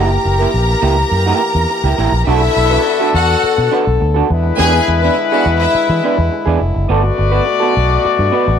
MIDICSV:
0, 0, Header, 1, 8, 480
1, 0, Start_track
1, 0, Key_signature, 2, "minor"
1, 0, Tempo, 578035
1, 1891, Time_signature, 4, 2, 24, 8
1, 7135, End_track
2, 0, Start_track
2, 0, Title_t, "Violin section"
2, 0, Program_c, 0, 48
2, 0, Note_on_c, 0, 70, 82
2, 0, Note_on_c, 0, 82, 100
2, 1852, Note_off_c, 0, 82, 0
2, 1853, Note_off_c, 0, 70, 0
2, 1878, Note_on_c, 0, 64, 109
2, 1881, Note_on_c, 0, 76, 119
2, 2572, Note_off_c, 0, 64, 0
2, 2574, Note_off_c, 0, 76, 0
2, 2616, Note_on_c, 0, 66, 99
2, 2617, Note_on_c, 0, 78, 103
2, 3066, Note_off_c, 0, 66, 0
2, 3066, Note_off_c, 0, 78, 0
2, 3800, Note_on_c, 0, 80, 126
2, 3806, Note_on_c, 0, 68, 118
2, 3997, Note_off_c, 0, 80, 0
2, 4000, Note_off_c, 0, 68, 0
2, 4163, Note_on_c, 0, 76, 82
2, 4168, Note_on_c, 0, 64, 85
2, 4263, Note_off_c, 0, 76, 0
2, 4266, Note_off_c, 0, 64, 0
2, 4410, Note_on_c, 0, 78, 76
2, 4412, Note_on_c, 0, 66, 78
2, 4506, Note_off_c, 0, 78, 0
2, 4508, Note_off_c, 0, 66, 0
2, 4650, Note_on_c, 0, 64, 92
2, 4652, Note_on_c, 0, 76, 91
2, 4989, Note_off_c, 0, 64, 0
2, 4989, Note_off_c, 0, 76, 0
2, 7135, End_track
3, 0, Start_track
3, 0, Title_t, "Horn section"
3, 0, Program_c, 1, 61
3, 1887, Note_on_c, 1, 62, 88
3, 1888, Note_on_c, 1, 66, 86
3, 1889, Note_on_c, 1, 69, 93
3, 3301, Note_off_c, 1, 62, 0
3, 3302, Note_off_c, 1, 66, 0
3, 3302, Note_off_c, 1, 69, 0
3, 3577, Note_on_c, 1, 64, 97
3, 3579, Note_on_c, 1, 68, 77
3, 3580, Note_on_c, 1, 71, 95
3, 5459, Note_off_c, 1, 64, 0
3, 5459, Note_off_c, 1, 68, 0
3, 5460, Note_off_c, 1, 71, 0
3, 5727, Note_on_c, 1, 71, 93
3, 5727, Note_on_c, 1, 74, 108
3, 5728, Note_on_c, 1, 69, 95
3, 7135, Note_off_c, 1, 69, 0
3, 7135, Note_off_c, 1, 71, 0
3, 7135, Note_off_c, 1, 74, 0
3, 7135, End_track
4, 0, Start_track
4, 0, Title_t, "Clean electric guitar"
4, 0, Program_c, 2, 27
4, 0, Note_on_c, 2, 58, 79
4, 0, Note_on_c, 2, 64, 97
4, 85, Note_off_c, 2, 64, 0
4, 133, Note_off_c, 2, 58, 0
4, 326, Note_on_c, 2, 70, 69
4, 338, Note_on_c, 2, 64, 63
4, 345, Note_on_c, 2, 58, 53
4, 412, Note_off_c, 2, 70, 0
4, 418, Note_off_c, 2, 64, 0
4, 421, Note_off_c, 2, 58, 0
4, 680, Note_on_c, 2, 58, 80
4, 686, Note_on_c, 2, 64, 86
4, 695, Note_on_c, 2, 67, 90
4, 793, Note_off_c, 2, 58, 0
4, 793, Note_off_c, 2, 67, 0
4, 797, Note_off_c, 2, 64, 0
4, 1048, Note_on_c, 2, 67, 81
4, 1055, Note_on_c, 2, 64, 84
4, 1065, Note_on_c, 2, 58, 68
4, 1164, Note_off_c, 2, 58, 0
4, 1169, Note_off_c, 2, 64, 0
4, 1175, Note_off_c, 2, 67, 0
4, 1529, Note_on_c, 2, 67, 57
4, 1538, Note_on_c, 2, 64, 56
4, 1548, Note_on_c, 2, 58, 45
4, 1615, Note_off_c, 2, 67, 0
4, 1620, Note_off_c, 2, 64, 0
4, 1625, Note_off_c, 2, 58, 0
4, 1644, Note_on_c, 2, 58, 86
4, 1651, Note_on_c, 2, 64, 95
4, 1658, Note_on_c, 2, 67, 89
4, 1756, Note_off_c, 2, 58, 0
4, 1756, Note_off_c, 2, 67, 0
4, 1760, Note_off_c, 2, 64, 0
4, 1886, Note_on_c, 2, 62, 83
4, 1892, Note_on_c, 2, 66, 106
4, 1901, Note_on_c, 2, 69, 98
4, 1997, Note_off_c, 2, 62, 0
4, 2001, Note_off_c, 2, 66, 0
4, 2003, Note_off_c, 2, 69, 0
4, 2245, Note_on_c, 2, 71, 69
4, 2254, Note_on_c, 2, 66, 63
4, 2258, Note_on_c, 2, 62, 54
4, 2334, Note_off_c, 2, 71, 0
4, 2338, Note_off_c, 2, 66, 0
4, 2340, Note_off_c, 2, 62, 0
4, 2488, Note_on_c, 2, 69, 77
4, 2493, Note_on_c, 2, 66, 84
4, 2502, Note_on_c, 2, 62, 72
4, 2599, Note_off_c, 2, 69, 0
4, 2600, Note_off_c, 2, 62, 0
4, 2602, Note_off_c, 2, 66, 0
4, 3084, Note_on_c, 2, 62, 86
4, 3094, Note_on_c, 2, 66, 96
4, 3099, Note_on_c, 2, 71, 87
4, 3197, Note_off_c, 2, 62, 0
4, 3199, Note_off_c, 2, 71, 0
4, 3202, Note_off_c, 2, 66, 0
4, 3442, Note_on_c, 2, 69, 72
4, 3451, Note_on_c, 2, 66, 67
4, 3458, Note_on_c, 2, 62, 68
4, 3556, Note_off_c, 2, 69, 0
4, 3559, Note_off_c, 2, 62, 0
4, 3561, Note_off_c, 2, 66, 0
4, 3797, Note_on_c, 2, 59, 88
4, 3803, Note_on_c, 2, 62, 92
4, 3817, Note_on_c, 2, 68, 91
4, 3915, Note_off_c, 2, 68, 0
4, 3926, Note_off_c, 2, 62, 0
4, 3971, Note_off_c, 2, 59, 0
4, 4172, Note_on_c, 2, 71, 76
4, 4185, Note_on_c, 2, 62, 67
4, 4187, Note_on_c, 2, 59, 60
4, 4257, Note_off_c, 2, 71, 0
4, 4264, Note_off_c, 2, 59, 0
4, 4264, Note_off_c, 2, 62, 0
4, 4416, Note_on_c, 2, 68, 91
4, 4422, Note_on_c, 2, 62, 86
4, 4434, Note_on_c, 2, 59, 70
4, 4523, Note_off_c, 2, 68, 0
4, 4525, Note_off_c, 2, 62, 0
4, 4532, Note_off_c, 2, 59, 0
4, 5012, Note_on_c, 2, 59, 81
4, 5020, Note_on_c, 2, 62, 87
4, 5025, Note_on_c, 2, 71, 99
4, 5120, Note_off_c, 2, 59, 0
4, 5124, Note_off_c, 2, 62, 0
4, 5126, Note_off_c, 2, 71, 0
4, 5361, Note_on_c, 2, 68, 73
4, 5373, Note_on_c, 2, 62, 78
4, 5378, Note_on_c, 2, 59, 65
4, 5473, Note_off_c, 2, 59, 0
4, 5474, Note_off_c, 2, 68, 0
4, 5480, Note_off_c, 2, 62, 0
4, 5721, Note_on_c, 2, 59, 87
4, 5730, Note_on_c, 2, 66, 104
4, 5739, Note_on_c, 2, 69, 105
4, 5827, Note_off_c, 2, 69, 0
4, 5834, Note_off_c, 2, 59, 0
4, 5838, Note_off_c, 2, 66, 0
4, 6075, Note_on_c, 2, 71, 69
4, 6081, Note_on_c, 2, 66, 71
4, 6091, Note_on_c, 2, 59, 50
4, 6167, Note_off_c, 2, 71, 0
4, 6170, Note_off_c, 2, 66, 0
4, 6174, Note_off_c, 2, 59, 0
4, 6310, Note_on_c, 2, 69, 76
4, 6320, Note_on_c, 2, 66, 79
4, 6331, Note_on_c, 2, 59, 73
4, 6425, Note_off_c, 2, 59, 0
4, 6427, Note_off_c, 2, 69, 0
4, 6429, Note_off_c, 2, 66, 0
4, 6911, Note_on_c, 2, 59, 98
4, 6918, Note_on_c, 2, 66, 82
4, 6924, Note_on_c, 2, 71, 85
4, 7026, Note_off_c, 2, 59, 0
4, 7029, Note_off_c, 2, 71, 0
4, 7030, Note_off_c, 2, 66, 0
4, 7135, End_track
5, 0, Start_track
5, 0, Title_t, "French horn section"
5, 0, Program_c, 3, 60
5, 0, Note_on_c, 3, 52, 75
5, 0, Note_on_c, 3, 58, 68
5, 0, Note_on_c, 3, 67, 94
5, 1861, Note_off_c, 3, 67, 0
5, 1867, Note_off_c, 3, 58, 0
5, 1869, Note_off_c, 3, 52, 0
5, 1892, Note_on_c, 3, 59, 73
5, 1893, Note_on_c, 3, 50, 85
5, 1896, Note_on_c, 3, 69, 98
5, 3556, Note_off_c, 3, 59, 0
5, 3558, Note_off_c, 3, 69, 0
5, 3583, Note_on_c, 3, 64, 99
5, 3585, Note_on_c, 3, 56, 80
5, 5697, Note_off_c, 3, 50, 0
5, 5713, Note_off_c, 3, 64, 0
5, 5714, Note_off_c, 3, 56, 0
5, 5724, Note_on_c, 3, 57, 81
5, 5726, Note_on_c, 3, 66, 94
5, 5730, Note_on_c, 3, 47, 89
5, 7135, Note_off_c, 3, 47, 0
5, 7135, Note_off_c, 3, 57, 0
5, 7135, Note_off_c, 3, 66, 0
5, 7135, End_track
6, 0, Start_track
6, 0, Title_t, "Fingered electric bass"
6, 0, Program_c, 4, 33
6, 0, Note_on_c, 4, 30, 108
6, 134, Note_off_c, 4, 30, 0
6, 209, Note_on_c, 4, 30, 90
6, 374, Note_off_c, 4, 30, 0
6, 449, Note_on_c, 4, 34, 88
6, 614, Note_off_c, 4, 34, 0
6, 686, Note_on_c, 4, 37, 97
6, 853, Note_off_c, 4, 37, 0
6, 925, Note_on_c, 4, 42, 110
6, 1092, Note_off_c, 4, 42, 0
6, 1285, Note_on_c, 4, 40, 93
6, 1370, Note_off_c, 4, 40, 0
6, 1526, Note_on_c, 4, 37, 99
6, 1610, Note_off_c, 4, 37, 0
6, 1647, Note_on_c, 4, 33, 87
6, 1731, Note_off_c, 4, 33, 0
6, 1762, Note_on_c, 4, 34, 101
6, 1848, Note_off_c, 4, 34, 0
6, 1889, Note_on_c, 4, 35, 112
6, 2055, Note_off_c, 4, 35, 0
6, 2131, Note_on_c, 4, 35, 88
6, 2297, Note_off_c, 4, 35, 0
6, 2610, Note_on_c, 4, 40, 88
6, 2777, Note_off_c, 4, 40, 0
6, 2973, Note_on_c, 4, 47, 89
6, 3056, Note_off_c, 4, 47, 0
6, 3215, Note_on_c, 4, 35, 86
6, 3297, Note_off_c, 4, 35, 0
6, 3329, Note_on_c, 4, 38, 103
6, 3495, Note_off_c, 4, 38, 0
6, 3574, Note_on_c, 4, 40, 115
6, 3739, Note_off_c, 4, 40, 0
6, 3812, Note_on_c, 4, 40, 116
6, 3977, Note_off_c, 4, 40, 0
6, 4053, Note_on_c, 4, 40, 96
6, 4218, Note_off_c, 4, 40, 0
6, 4533, Note_on_c, 4, 40, 86
6, 4697, Note_off_c, 4, 40, 0
6, 4895, Note_on_c, 4, 52, 96
6, 4976, Note_off_c, 4, 52, 0
6, 5135, Note_on_c, 4, 40, 97
6, 5216, Note_off_c, 4, 40, 0
6, 5369, Note_on_c, 4, 40, 94
6, 5452, Note_off_c, 4, 40, 0
6, 5490, Note_on_c, 4, 29, 98
6, 5572, Note_off_c, 4, 29, 0
6, 5614, Note_on_c, 4, 30, 86
6, 5695, Note_off_c, 4, 30, 0
6, 5729, Note_on_c, 4, 31, 111
6, 5894, Note_off_c, 4, 31, 0
6, 5970, Note_on_c, 4, 31, 90
6, 6134, Note_off_c, 4, 31, 0
6, 6451, Note_on_c, 4, 35, 95
6, 6614, Note_off_c, 4, 35, 0
6, 6801, Note_on_c, 4, 43, 99
6, 6885, Note_off_c, 4, 43, 0
6, 7039, Note_on_c, 4, 33, 97
6, 7124, Note_off_c, 4, 33, 0
6, 7135, End_track
7, 0, Start_track
7, 0, Title_t, "Muted clean electric guitar strokes"
7, 82, Note_on_c, 9, 29, 47
7, 165, Note_off_c, 9, 29, 0
7, 210, Note_on_c, 9, 29, 45
7, 293, Note_off_c, 9, 29, 0
7, 450, Note_on_c, 9, 29, 44
7, 534, Note_off_c, 9, 29, 0
7, 570, Note_on_c, 9, 29, 55
7, 653, Note_off_c, 9, 29, 0
7, 803, Note_on_c, 9, 29, 39
7, 886, Note_off_c, 9, 29, 0
7, 925, Note_on_c, 9, 29, 54
7, 1008, Note_off_c, 9, 29, 0
7, 1174, Note_on_c, 9, 29, 39
7, 1257, Note_off_c, 9, 29, 0
7, 1290, Note_on_c, 9, 29, 48
7, 1373, Note_off_c, 9, 29, 0
7, 1409, Note_on_c, 9, 29, 39
7, 1492, Note_off_c, 9, 29, 0
7, 1766, Note_on_c, 9, 29, 41
7, 1849, Note_off_c, 9, 29, 0
7, 2013, Note_on_c, 9, 29, 57
7, 2096, Note_off_c, 9, 29, 0
7, 2135, Note_on_c, 9, 29, 36
7, 2218, Note_off_c, 9, 29, 0
7, 2375, Note_on_c, 9, 29, 36
7, 2458, Note_off_c, 9, 29, 0
7, 2610, Note_on_c, 9, 29, 49
7, 2693, Note_off_c, 9, 29, 0
7, 2730, Note_on_c, 9, 29, 49
7, 2813, Note_off_c, 9, 29, 0
7, 2849, Note_on_c, 9, 29, 51
7, 2932, Note_off_c, 9, 29, 0
7, 2967, Note_on_c, 9, 29, 41
7, 3050, Note_off_c, 9, 29, 0
7, 3202, Note_on_c, 9, 29, 52
7, 3285, Note_off_c, 9, 29, 0
7, 3330, Note_on_c, 9, 29, 41
7, 3413, Note_off_c, 9, 29, 0
7, 3562, Note_on_c, 9, 29, 41
7, 3645, Note_off_c, 9, 29, 0
7, 3683, Note_on_c, 9, 29, 49
7, 3767, Note_off_c, 9, 29, 0
7, 3925, Note_on_c, 9, 29, 53
7, 4008, Note_off_c, 9, 29, 0
7, 4056, Note_on_c, 9, 29, 44
7, 4139, Note_off_c, 9, 29, 0
7, 4298, Note_on_c, 9, 29, 42
7, 4381, Note_off_c, 9, 29, 0
7, 4540, Note_on_c, 9, 29, 42
7, 4623, Note_off_c, 9, 29, 0
7, 4656, Note_on_c, 9, 29, 41
7, 4739, Note_off_c, 9, 29, 0
7, 4775, Note_on_c, 9, 29, 45
7, 4858, Note_off_c, 9, 29, 0
7, 4900, Note_on_c, 9, 29, 36
7, 4983, Note_off_c, 9, 29, 0
7, 5130, Note_on_c, 9, 29, 39
7, 5213, Note_off_c, 9, 29, 0
7, 5244, Note_on_c, 9, 29, 52
7, 5327, Note_off_c, 9, 29, 0
7, 5483, Note_on_c, 9, 29, 53
7, 5566, Note_off_c, 9, 29, 0
7, 5601, Note_on_c, 9, 29, 46
7, 5684, Note_off_c, 9, 29, 0
7, 5837, Note_on_c, 9, 29, 55
7, 5920, Note_off_c, 9, 29, 0
7, 5958, Note_on_c, 9, 29, 48
7, 6041, Note_off_c, 9, 29, 0
7, 6194, Note_on_c, 9, 29, 51
7, 6277, Note_off_c, 9, 29, 0
7, 6435, Note_on_c, 9, 29, 37
7, 6518, Note_off_c, 9, 29, 0
7, 6552, Note_on_c, 9, 29, 51
7, 6635, Note_off_c, 9, 29, 0
7, 6677, Note_on_c, 9, 29, 47
7, 6760, Note_off_c, 9, 29, 0
7, 6803, Note_on_c, 9, 29, 46
7, 6886, Note_off_c, 9, 29, 0
7, 7032, Note_on_c, 9, 29, 46
7, 7115, Note_off_c, 9, 29, 0
7, 7135, End_track
8, 0, Start_track
8, 0, Title_t, "Muted fingered electric bass strokes"
8, 2853, Note_on_c, 9, 29, 53
8, 2936, Note_off_c, 9, 29, 0
8, 4772, Note_on_c, 9, 29, 50
8, 4855, Note_off_c, 9, 29, 0
8, 6688, Note_on_c, 9, 29, 55
8, 6771, Note_off_c, 9, 29, 0
8, 7135, End_track
0, 0, End_of_file